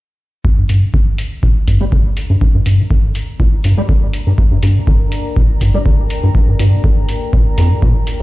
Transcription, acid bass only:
0.45 0.49 G2 medium
0.58 0.64 G2 medium
0.69 0.84 G2 medium
0.82 0.86 A2 medium
0.94 0.98 D3 medium
1.43 1.47 A#2 medium
1.68 1.78 G2 medium
1.81 1.84 G3 medium
1.92 1.97 D3 medium
2.30 2.36 G2 medium
2.41 2.46 G2 medium
2.54 2.61 G2 medium
2.66 2.81 G2 medium
2.79 2.83 A2 medium
2.90 2.95 D3 medium
3.40 3.44 A#2 medium
3.64 3.75 G2 medium
3.78 3.81 G3 loud
3.89 3.93 D3 medium
4.27 4.33 G2 medium
4.38 4.42 G2 medium
4.51 4.58 G2 medium
4.63 4.77 G2 medium
4.76 4.80 A2 medium
4.87 4.92 D3 medium
5.36 5.41 A#2 medium
5.61 5.72 G2 medium
5.74 5.78 G3 medium
5.86 5.90 D3 medium
6.23 6.30 G2 medium
6.35 6.39 G2 medium
6.48 6.54 G2 medium
6.60 6.74 G2 medium
6.73 6.76 A2 medium
6.84 6.88 D3 medium
7.33 7.38 A#2 medium
7.58 7.72 F2 medium
7.71 7.75 G2 medium
7.82 7.93 A#2 medium

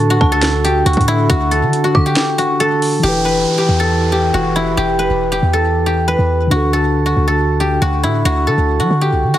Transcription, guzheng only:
0.00 0.21 E4 loud
0.00 0.32 A4 medium
0.00 1.17 B4 medium
0.10 0.70 F#4 medium
0.32 1.51 A4 medium
0.64 0.92 G4 medium
0.86 1.29 F#4 medium
1.08 3.69 E4 loud
1.30 1.84 F#4 loud
1.51 2.60 A4 medium
1.84 2.12 F#4 medium
2.06 2.44 G4 medium
2.38 3.09 F#4 medium
2.60 3.79 A4 medium
3.03 3.57 G4 loud
3.25 4.99 B4 medium
3.58 4.12 G4 medium
3.80 5.53 A4 medium
4.12 4.40 G4 medium
4.34 4.83 F#4 medium
4.56 7.17 E4 medium
4.77 5.31 G4 loud
4.99 6.07 B4 medium
5.32 5.86 G4 medium
5.53 6.73 A4 medium
5.86 6.57 G4 medium
6.08 8.13 B4 medium
6.51 7.05 F#4 loud
6.73 7.27 A4 medium
7.06 7.66 F#4 medium
7.28 8.47 A4 medium
7.60 7.88 G4 medium
7.82 8.25 F#4 medium
8.03 9.38 E4 medium
8.25 8.79 F#4 loud
8.47 9.38 A4 medium
8.80 9.07 F#4 medium
9.01 9.38 G4 medium
9.34 9.38 F#4 medium

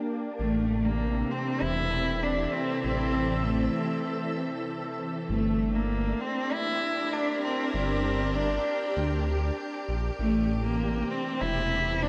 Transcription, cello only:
0.39 0.87 A3 loud
0.85 1.33 A#3 loud
1.31 1.63 C4 loud
1.62 2.25 E4 loud
2.23 2.55 D4 loud
2.54 2.84 C4 loud
2.84 3.47 C4 loud
3.45 4.07 A3 medium
5.29 5.77 A3 loud
5.75 6.23 A#3 loud
6.21 6.53 C4 loud
6.52 7.14 E4 loud
7.13 7.43 D4 loud
7.44 7.72 C4 loud
7.74 8.37 C4 loud
8.35 8.96 D4 medium
10.19 10.62 A3 loud
10.65 11.12 A#3 loud
11.11 11.43 C4 loud
11.41 12.04 E4 loud
12.03 12.09 D4 loud

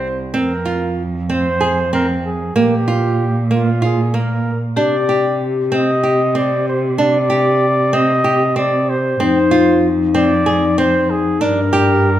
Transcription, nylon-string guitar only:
0.34 0.52 C4 medium
0.65 1.02 F4 medium
1.30 1.47 C4 medium
1.61 1.79 G#4 medium
1.93 2.29 C4 medium
2.56 2.74 A#3 medium
2.88 3.24 F4 medium
3.51 3.69 A#3 medium
3.82 4.00 F4 medium
4.14 4.50 A#3 medium
4.77 4.95 D4 medium
5.09 5.45 G4 medium
5.72 5.90 C4 medium
6.03 6.21 G4 medium
6.35 6.71 C4 medium
6.98 7.16 D4 medium
7.30 7.66 G4 medium
7.93 8.11 C4 medium
8.24 8.42 G4 medium
8.56 8.92 C4 medium
9.20 9.38 C4 medium
9.51 9.87 F4 medium
10.15 10.32 C4 medium
10.46 10.64 G#4 medium
10.78 11.14 C4 medium
11.41 11.59 D4 medium
11.73 12.09 G4 medium

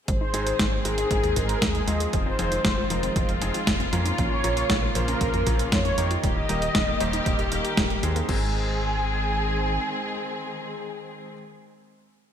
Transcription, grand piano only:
0.34 0.52 G#2 medium
0.34 0.52 G#3 medium
0.34 0.52 C4 medium
0.34 0.52 D#4 medium
0.34 0.52 G#4 medium
0.85 1.33 G#2 medium
0.85 1.33 G#3 medium
0.85 1.33 C4 medium
0.85 1.33 D#4 medium
0.85 1.33 A#4 medium
1.36 1.54 G#2 medium
1.36 1.54 G#3 medium
1.36 1.55 C4 medium
1.36 1.55 D#4 medium
1.36 1.55 G#4 medium
1.88 2.36 F3 medium
1.88 2.36 C4 medium
1.88 2.36 D#4 medium
1.88 2.36 F4 medium
1.88 2.36 G#4 medium
2.39 2.57 F3 medium
2.39 2.57 C4 medium
2.39 2.57 D#4 medium
2.39 2.57 F4 medium
2.39 2.57 G#4 medium
2.90 3.38 F3 medium
2.90 3.38 C4 medium
2.90 3.38 D#4 medium
2.90 3.38 F4 medium
2.90 3.38 A#4 medium
3.41 3.60 F3 medium
3.41 3.60 C4 medium
3.41 3.60 D#4 medium
3.41 3.60 F4 medium
3.41 3.60 G#4 medium
3.93 4.41 A#2 medium
3.93 4.41 A#3 medium
3.93 4.41 C#4 medium
3.93 4.41 F4 medium
3.93 4.41 A#4 medium
4.44 4.62 A#2 medium
4.44 4.62 A#3 medium
4.44 4.62 C#4 medium
4.44 4.62 F4 medium
4.44 4.62 A#4 medium
4.95 5.44 A#2 medium
4.95 5.44 A#3 medium
4.95 5.44 C#4 medium
4.95 5.44 F4 medium
4.95 5.44 C5 medium
5.46 5.65 A#2 medium
5.46 5.65 A#3 medium
5.46 5.65 C#4 medium
5.46 5.65 F4 medium
5.46 5.65 A#4 medium
5.98 6.46 D#3 medium
5.98 6.46 A#3 medium
5.98 6.46 D#4 medium
5.98 6.46 G4 medium
5.98 6.46 A#4 medium
6.49 6.67 D#3 medium
6.49 6.67 A#3 medium
6.49 6.67 D#4 medium
6.49 6.67 G4 medium
6.49 6.67 A#4 loud
7.00 7.49 D#3 medium
7.00 7.49 A#3 medium
7.00 7.49 D#4 medium
7.00 7.49 G4 medium
7.00 7.49 C5 medium
7.52 8.00 D#3 medium
7.52 8.00 A#3 medium
7.52 8.00 D#4 medium
7.52 8.00 G4 medium
7.52 8.00 A#4 medium
8.03 8.51 G#2 medium
8.03 8.27 G#3 medium
8.03 8.27 C4 medium
8.03 8.27 D#4 medium
8.03 8.27 G#4 medium
8.29 11.32 G#3 medium
8.29 11.32 C4 medium
8.29 11.32 D#4 medium
8.29 11.32 G#4 medium

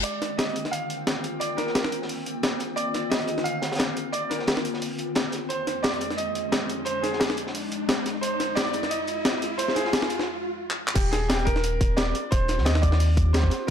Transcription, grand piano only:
0.03 0.39 D5 loud
0.37 0.73 D#5 medium
0.71 1.42 F5 loud
1.40 1.58 D5 loud
1.57 1.89 A#4 medium
2.76 3.08 D5 loud
3.10 3.46 D#5 loud
3.44 4.09 F5 loud
4.12 4.31 D5 loud
4.29 4.62 A#4 medium
5.49 5.81 C5 loud
5.83 6.15 D5 loud
6.17 6.88 D#5 loud
6.85 7.03 C5 loud
7.02 7.34 G#4 medium
8.21 8.57 C5 loud
8.55 8.91 D5 loud
8.89 9.61 D#5 loud
9.58 9.76 C5 loud
9.75 10.07 G#4 loud
10.94 11.12 G4 loud
11.11 11.30 G#4 medium
11.28 11.45 G4 medium
11.45 11.99 A#4 loud
11.97 12.32 D5 loud
12.31 12.67 C5 loud
12.65 12.83 D#5 loud
12.82 13.35 D5 loud
13.33 13.69 C5 loud
13.67 13.70 A#4 loud

